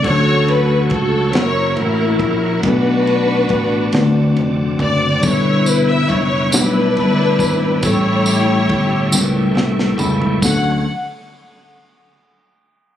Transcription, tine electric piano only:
0.03 1.30 F#3 medium
0.03 1.27 A3 medium
0.03 1.28 C#4 medium
0.03 1.28 D4 medium
0.03 1.28 F#4 medium
0.03 1.28 C#5 medium
1.32 2.56 A#3 medium
1.32 2.57 C#4 medium
1.32 2.57 E4 medium
1.32 2.58 F#4 medium
1.32 2.58 C#5 medium
2.63 3.90 B2 medium
2.63 3.87 A3 medium
2.63 3.87 B3 medium
2.63 3.87 D4 medium
2.63 3.87 F#4 medium
2.63 2.71 A4 medium
2.72 3.91 B4 medium
3.92 5.19 D3 medium
3.92 5.16 A3 medium
3.92 5.17 C4 medium
3.92 5.17 D4 medium
3.92 5.17 F#4 medium
3.92 5.17 D5 loud
5.21 6.49 B2 medium
5.21 6.45 G3 medium
5.21 6.46 B3 medium
5.21 6.46 D4 medium
5.21 6.46 E4 medium
5.21 5.30 A4 medium
5.30 6.50 B4 medium
6.52 7.76 G3 medium
6.52 6.59 A3 medium
6.52 7.76 D4 medium
6.52 7.76 E4 medium
6.52 7.77 C#5 medium
6.59 7.79 B3 medium
7.82 9.09 A2 medium
7.82 9.05 G3 medium
7.82 9.06 A3 medium
7.82 7.89 B3 medium
7.82 9.06 E4 medium
7.82 9.07 A4 medium
7.90 9.09 C#4 medium
9.13 10.35 G3 medium
9.13 10.36 A3 medium
9.13 10.36 C#4 medium
9.13 10.36 E4 medium
9.13 9.20 A#4 medium
9.22 10.40 B4 loud
9.57 9.96 E5 medium
10.00 10.39 B5 medium
10.43 10.83 D2 medium
10.43 10.83 F#3 medium
10.43 10.83 C#4 medium
10.43 10.83 D4 medium
10.43 10.83 A4 medium

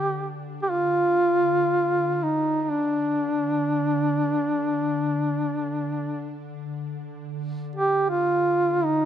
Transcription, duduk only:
0.00 0.40 G4 medium
0.63 0.72 G4 medium
0.71 2.14 F4 medium
2.14 2.25 F4 soft
2.23 2.63 D#4 medium
2.63 2.71 D#4 soft
2.70 6.44 D4 medium
7.76 8.06 G4 medium
8.09 8.86 F4 medium
8.85 9.05 D#4 medium

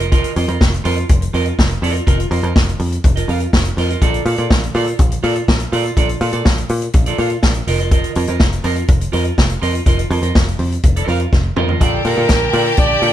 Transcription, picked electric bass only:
0.00 0.22 F1 medium
0.36 0.45 F2 loud
0.48 0.57 F2 medium
0.61 0.78 F1 medium
0.85 1.03 F2 loud
1.10 1.27 F1 loud
1.34 1.51 F2 medium
1.59 1.76 F1 loud
1.82 2.00 F2 medium
2.07 2.24 F1 loud
2.31 2.40 F2 loud
2.43 2.52 F2 medium
2.56 2.73 F1 loud
2.80 2.97 F2 medium
3.05 3.22 F1 loud
3.28 3.46 F2 medium
3.53 3.70 F1 medium
3.77 3.95 F2 medium
4.02 4.19 A#1 medium
4.26 4.34 A#2 medium
4.38 4.47 A#2 medium
4.51 4.68 A#1 loud
4.75 4.92 A#2 loud
4.99 5.17 A#1 loud
5.24 5.41 A#2 medium
5.48 5.66 A#1 medium
5.73 5.90 A#2 medium
5.97 6.14 A#1 medium
6.21 6.30 A#2 loud
6.33 6.42 A#2 medium
6.46 6.63 A#1 medium
6.70 6.87 A#2 loud
6.94 7.12 A#1 medium
7.19 7.36 A#2 medium
7.43 7.61 A#1 loud
7.67 8.02 F1 medium
8.16 8.25 F2 loud
8.28 8.37 F2 medium
8.40 8.58 F1 loud
8.64 8.82 F2 loud
8.89 9.06 F1 loud
9.13 9.31 F2 medium
9.38 9.55 F1 loud
9.62 9.80 F2 medium
9.86 10.04 F1 medium
10.10 10.19 F2 loud
10.22 10.31 F2 medium
10.36 10.53 F1 medium
10.59 10.77 F2 medium
10.84 11.01 F1 medium
11.08 11.25 F2 medium
11.33 11.50 F1 medium
11.57 11.74 F2 medium
11.81 11.98 A#1 loud
12.05 12.14 A#2 loud
12.17 12.26 A#2 medium
12.30 12.47 A#1 loud
12.53 12.71 A#2 loud
12.78 12.96 A#1 loud
13.02 13.13 A#2 medium

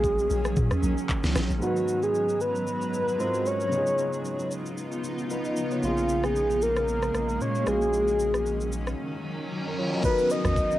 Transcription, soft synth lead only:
0.00 1.10 G#4 loud
1.62 2.05 F#4 medium
2.03 2.43 G#4 medium
2.41 3.22 B4 loud
3.20 3.48 C5 loud
3.47 4.52 C#5 loud
5.84 6.26 F4 medium
6.24 6.64 G#4 medium
6.63 7.43 A#4 loud
7.42 7.70 C#5 loud
7.68 8.73 G#4 loud
10.05 10.33 B4 loud
10.31 10.79 D#5 loud

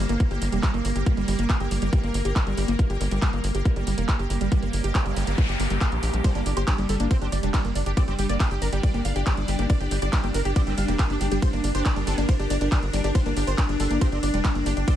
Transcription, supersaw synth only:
6.24 6.30 C5 loud
6.35 6.41 D4 medium
6.46 6.52 D4 medium
6.57 6.62 C5 loud
6.68 6.73 D4 medium
6.78 6.84 D4 medium
6.89 6.95 A4 medium
7.00 7.06 D4 medium
7.11 7.16 C5 medium
7.22 7.27 D4 medium
7.32 7.38 D5 loud
7.43 7.49 D4 medium
7.54 7.60 D4 medium
7.75 7.81 D4 medium
7.86 7.92 D4 medium
7.97 8.03 D5 loud
8.08 8.14 G4 medium
8.19 8.24 G4 medium
8.29 8.35 D5 loud
8.40 8.46 G4 medium
8.51 8.57 G4 medium
8.62 8.67 A#4 medium
8.73 8.78 G4 medium
8.83 8.89 D5 medium
8.94 9.00 G4 medium
9.05 9.11 F5 loud
9.16 9.21 G4 medium
9.27 9.32 G4 medium
9.48 9.54 G4 medium
9.59 9.65 G4 medium
9.70 9.75 D5 loud
9.80 9.86 G4 medium
9.91 9.97 G4 medium
10.02 10.08 D5 loud
10.13 10.19 G4 medium
10.24 10.29 G4 medium
10.34 10.40 A#4 medium
10.45 10.51 G4 medium
10.56 10.62 D5 medium
10.67 10.72 G4 medium
10.78 10.83 F5 medium
10.88 10.94 G4 medium
10.99 11.05 G4 medium
11.21 11.26 G4 medium
11.32 11.37 G4 medium
11.42 11.48 C5 loud
11.53 11.59 D4 medium
11.64 11.70 D4 medium
11.75 11.80 C5 medium
11.85 11.91 D4 medium
11.96 12.02 D4 medium
12.07 12.13 A4 medium
12.18 12.24 D4 medium
12.29 12.34 C5 medium
12.39 12.45 D4 medium
12.50 12.56 D5 loud
12.61 12.67 D4 medium
12.72 12.78 D4 medium
12.93 12.99 D4 medium
13.04 13.10 D4 medium
13.15 13.21 C5 loud
13.26 13.31 D4 medium
13.37 13.42 D4 medium
13.47 13.53 C5 loud
13.58 13.64 D4 medium
13.69 13.75 D4 medium
13.80 13.85 A4 medium
13.91 13.96 D4 medium
14.01 14.07 C5 medium
14.12 14.18 D4 medium
14.23 14.29 D5 medium
14.34 14.39 D4 medium
14.45 14.50 D4 medium
14.66 14.72 D4 medium
14.77 14.83 D4 medium
14.88 14.93 D5 loud

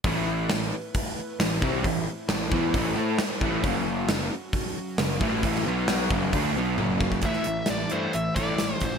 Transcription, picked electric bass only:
0.05 0.47 A1 medium
0.51 0.71 A1 medium
1.40 1.60 A1 medium
1.63 1.83 C2 loud
1.85 2.05 A1 medium
2.28 2.50 A1 medium
2.52 2.73 E2 loud
2.75 2.95 A1 loud
2.95 3.17 A2 loud
3.19 muted picked electric bass stroke soft
3.41 3.62 A1 loud
3.64 4.06 F#1 medium
4.07 4.29 F#1 medium
4.98 5.19 F#1 medium
5.21 5.42 A1 medium
5.43 5.65 A1 medium
5.66 6.08 B1 medium
6.11 6.32 F#1 medium
6.33 6.55 D2 medium
6.57 6.77 B1 medium
6.79 7.21 F#1 medium
7.22 7.37 A1 medium
7.47 7.61 A1 medium
7.70 7.84 A1 medium
7.93 8.06 G2 medium
8.15 8.29 A1 medium
8.36 8.50 A1 medium
8.61 8.74 A1 medium
8.82 8.96 A1 medium

